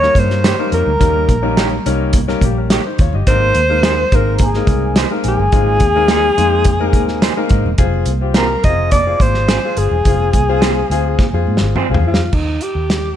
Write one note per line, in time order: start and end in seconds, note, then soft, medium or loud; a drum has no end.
0.00 0.43 G3 medium
0.00 0.43 A#3 medium
0.00 0.43 C#4 medium
0.00 0.43 D#4 medium
0.00 0.43 A#4 medium
0.00 0.21 C#5 loud
0.00 0.17 C#6 loud
0.00 snare soft
0.15 0.52 G2 medium
0.15 0.73 C6 medium
0.15 kick loud
0.15 closed hi-hat medium
0.15 high conga medium
0.19 0.73 C5 loud
0.30 snare soft
0.44 0.53 A#3 medium
0.44 0.54 D#4 medium
0.44 0.54 G4 medium
0.44 0.54 C#5 loud
0.44 snare loud
0.44 closed hi-hat loud
0.44 muted conga soft
0.58 0.89 G3 medium
0.58 0.89 A#3 medium
0.58 0.89 C#4 medium
0.58 0.89 D#4 medium
0.58 0.89 A#4 medium
0.58 muted conga soft
0.72 0.84 F2 medium
0.72 1.82 A#4 medium
0.72 1.82 A#5 medium
0.72 closed hi-hat medium
0.86 0.99 D2 medium
0.86 low conga medium
0.99 1.25 D#2 loud
0.99 1.31 G3 medium
0.99 1.31 A#3 medium
0.99 1.31 C#4 medium
0.99 1.31 D#4 medium
0.99 1.31 A#4 medium
0.99 kick loud
0.99 closed hi-hat medium
0.99 muted conga soft
0.99 low conga medium
1.14 muted conga soft
1.28 1.77 A#1 loud
1.28 kick medium
1.28 closed hi-hat medium
1.28 high conga soft
1.42 1.73 G3 medium
1.42 1.73 A#3 medium
1.42 1.73 C#4 medium
1.42 1.73 D#4 medium
1.42 1.74 A#4 medium
1.56 1.67 A#3 medium
1.56 1.67 D#4 medium
1.56 1.67 G4 medium
1.56 1.67 C#5 medium
1.56 snare loud
1.56 closed hi-hat medium
1.56 muted conga soft
1.56 high conga medium
1.71 low conga medium
1.86 2.34 C2 medium
1.86 2.16 G3 medium
1.86 2.16 A#3 medium
1.86 2.16 C#4 medium
1.86 2.16 D#4 medium
1.86 2.16 A#4 loud
1.86 closed hi-hat medium
2.13 kick loud
2.13 closed hi-hat loud
2.13 muted conga soft
2.13 high conga medium
2.28 2.69 G3 medium
2.28 2.42 A#3 medium
2.28 2.42 C#4 medium
2.28 2.42 D#4 medium
2.28 2.42 A#4 loud
2.28 snare soft
2.28 muted conga soft
2.41 2.78 A#1 medium
2.41 2.57 A#3 medium
2.41 2.56 G4 medium
2.41 kick medium
2.41 closed hi-hat medium
2.41 high conga medium
2.58 2.84 C#4 medium
2.58 2.84 A#4 medium
2.70 2.80 A#3 medium
2.70 2.80 D#4 medium
2.70 2.81 G4 medium
2.70 2.81 C#5 medium
2.70 snare loud
2.70 closed hi-hat loud
2.86 2.99 D#4 medium
2.86 2.99 C5 medium
2.98 3.11 D#2 medium
2.98 3.13 F4 medium
2.98 3.13 C#5 medium
2.98 kick loud
2.98 closed hi-hat medium
3.13 3.25 G1 medium
3.13 3.41 G4 medium
3.13 3.40 D#5 medium
3.13 low conga medium
3.26 3.51 G#1 loud
3.26 3.58 G#3 medium
3.26 3.58 A#3 medium
3.26 3.59 C4 medium
3.26 3.58 D#4 medium
3.26 3.58 A#4 loud
3.26 4.17 C5 loud
3.26 4.08 C6 loud
3.26 kick loud
3.26 closed hi-hat medium
3.26 low conga medium
3.41 muted conga soft
3.55 4.04 D#2 loud
3.55 closed hi-hat medium
3.55 high conga medium
3.69 4.00 G#3 medium
3.69 4.00 A#3 medium
3.69 4.00 C4 medium
3.69 4.00 D#4 medium
3.69 4.00 A#4 medium
3.83 3.93 A#3 medium
3.83 3.93 D#4 medium
3.83 3.93 G#4 medium
3.83 3.94 C5 medium
3.83 snare loud
3.83 closed hi-hat medium
3.83 high conga medium
3.98 low conga medium
4.12 4.60 G#1 medium
4.12 4.43 G#3 medium
4.12 4.43 A#3 medium
4.12 4.43 C4 medium
4.12 4.43 D#4 medium
4.12 4.37 A#4 loud
4.12 4.43 C5 medium
4.12 4.33 A#5 medium
4.12 kick loud
4.12 closed hi-hat medium
4.34 4.47 A#4 medium
4.34 4.40 A#5 soft
4.38 4.98 G#5 medium
4.38 kick loud
4.38 closed hi-hat loud
4.38 high conga medium
4.45 4.99 G#4 medium
4.54 4.95 G#3 medium
4.54 4.96 A#3 medium
4.54 4.96 C4 medium
4.54 4.96 D#4 medium
4.54 4.96 A#4 medium
4.54 snare soft
4.54 muted conga soft
4.67 5.04 C2 medium
4.67 kick loud
4.67 closed hi-hat medium
4.67 high conga medium
4.96 5.06 A#3 medium
4.96 5.06 D#4 medium
4.96 5.06 G#4 medium
4.96 5.07 C5 loud
4.96 snare loud
4.96 closed hi-hat loud
5.10 5.41 G#3 medium
5.10 5.41 A#3 medium
5.10 5.41 C4 medium
5.10 5.42 D#4 medium
5.10 5.41 A#4 medium
5.10 muted conga soft
5.24 5.37 A#1 medium
5.24 7.46 G#5 medium
5.24 closed hi-hat medium
5.28 7.49 G#4 loud
5.38 5.50 G1 medium
5.38 low conga medium
5.52 5.82 G#1 loud
5.52 5.83 G#3 medium
5.52 5.83 A#3 medium
5.52 5.83 C4 medium
5.52 5.84 D#4 medium
5.52 5.84 F4 medium
5.52 kick loud
5.52 closed hi-hat medium
5.52 low conga medium
5.80 6.29 D#2 loud
5.80 kick medium
5.80 closed hi-hat medium
5.80 high conga soft
5.95 6.26 G#3 medium
5.95 6.26 A#3 medium
5.95 6.26 C4 medium
5.95 6.26 D#4 medium
5.95 6.26 A#4 medium
6.08 6.19 A#3 medium
6.08 6.19 D#4 medium
6.08 6.19 G#4 medium
6.08 6.20 C5 loud
6.08 snare loud
6.08 closed hi-hat medium
6.08 muted conga soft
6.08 high conga medium
6.24 muted conga soft
6.24 low conga medium
6.37 6.93 F2 medium
6.37 6.68 G#3 medium
6.37 6.68 A#3 medium
6.37 6.68 C4 medium
6.37 6.68 D#4 medium
6.37 6.68 C5 loud
6.37 closed hi-hat medium
6.64 kick loud
6.64 closed hi-hat loud
6.64 muted conga soft
6.64 high conga medium
6.80 7.21 G#3 medium
6.80 7.21 A#3 medium
6.80 7.21 C4 medium
6.80 7.21 D#4 medium
6.80 7.21 A#4 loud
6.80 muted conga soft
6.93 7.30 D#2 medium
6.93 kick medium
6.93 closed hi-hat medium
6.93 high conga medium
7.08 snare soft
7.22 7.32 A#3 medium
7.22 7.32 D#4 medium
7.22 7.32 G#4 medium
7.22 7.32 C5 loud
7.22 snare loud
7.22 closed hi-hat loud
7.22 muted conga soft
7.36 7.67 G#3 medium
7.36 7.67 A#3 medium
7.36 7.67 C4 medium
7.36 7.67 D#4 medium
7.36 7.67 A#4 loud
7.49 7.63 G#2 medium
7.49 kick loud
7.49 closed hi-hat medium
7.64 7.77 E1 medium
7.64 low conga medium
7.78 8.03 F1 loud
7.78 8.09 C4 loud
7.78 8.09 F4 medium
7.78 8.09 G#4 loud
7.78 kick loud
7.78 closed hi-hat medium
7.78 muted conga soft
7.78 low conga medium
7.94 muted conga soft
8.05 8.55 C2 loud
8.05 closed hi-hat medium
8.05 high conga soft
8.21 8.52 C4 medium
8.21 8.52 F4 medium
8.21 8.52 G4 medium
8.34 8.45 C4 medium
8.34 8.45 F4 medium
8.34 8.45 G#4 medium
8.34 8.63 A#4 medium
8.34 8.45 C5 loud
8.34 8.62 A#5 medium
8.34 snare loud
8.34 closed hi-hat medium
8.34 muted conga soft
8.34 high conga medium
8.49 muted conga soft
8.49 low conga medium
8.64 9.13 F1 medium
8.64 8.95 C4 medium
8.64 8.95 F4 medium
8.64 8.95 G#4 medium
8.64 8.91 D#5 loud
8.64 8.90 D#6 medium
8.64 kick loud
8.64 closed hi-hat medium
8.91 9.24 D5 loud
8.91 9.18 D6 medium
8.91 kick loud
8.91 closed hi-hat loud
8.91 muted conga soft
8.91 high conga medium
9.06 9.47 C4 medium
9.06 9.47 F4 medium
9.06 9.47 G#4 medium
9.06 muted conga soft
9.19 9.57 G#1 medium
9.19 9.79 C5 loud
9.19 9.77 C6 medium
9.19 kick medium
9.19 closed hi-hat medium
9.19 high conga medium
9.34 snare soft
9.48 9.58 C4 medium
9.48 9.58 F4 medium
9.48 9.58 G#4 medium
9.48 9.59 C5 medium
9.48 snare loud
9.48 closed hi-hat loud
9.62 9.94 C4 medium
9.62 9.94 F4 medium
9.62 9.95 G#4 medium
9.62 muted conga soft
9.77 9.89 G1 medium
9.77 11.48 G#4 medium
9.77 11.48 G#5 medium
9.77 closed hi-hat medium
9.91 10.04 E1 medium
9.91 low conga medium
10.05 10.30 F1 loud
10.05 10.37 C4 medium
10.05 10.37 F4 medium
10.05 10.37 G#4 medium
10.05 kick loud
10.05 closed hi-hat medium
10.05 muted conga soft
10.05 low conga medium
10.20 muted conga soft
10.33 10.82 C2 loud
10.33 kick medium
10.33 closed hi-hat medium
10.33 high conga medium
10.49 10.79 C4 loud
10.49 10.80 F4 medium
10.49 10.80 G#4 loud
10.61 10.71 C4 medium
10.61 10.72 F4 loud
10.61 10.72 G#4 medium
10.61 10.72 C5 loud
10.61 snare loud
10.61 closed hi-hat medium
10.61 muted conga soft
10.61 high conga medium
10.75 muted conga soft
10.75 low conga medium
10.90 11.15 D2 medium
10.90 11.22 C4 medium
10.90 11.22 F4 medium
10.90 11.22 G#4 loud
10.90 closed hi-hat medium
11.19 kick loud
11.19 snare medium
11.19 muted conga soft
11.19 high conga medium
11.33 11.46 F2 medium
11.33 11.75 C4 medium
11.33 11.75 F4 medium
11.33 11.75 G#4 loud
11.47 11.60 G#2 medium
11.47 high conga medium
11.57 snare medium
11.62 11.74 G#1 loud
11.76 11.86 C4 medium
11.76 11.86 F4 medium
11.76 11.86 G#4 medium
11.76 11.86 C5 loud
11.76 mid tom medium
11.90 12.03 C2 medium
11.90 12.21 C4 medium
11.90 12.21 F4 medium
11.90 12.22 G#4 medium
11.94 floor tom loud
12.03 12.28 F2 medium
12.03 12.35 F4 medium
12.14 snare loud
12.19 low conga medium
12.33 12.58 D#2 loud
12.33 12.64 D#4 medium
12.33 kick loud
12.33 crash medium
12.61 13.16 G4 medium
12.61 closed hi-hat medium
12.75 13.12 D#2 medium
12.90 snare loud
12.90 closed hi-hat medium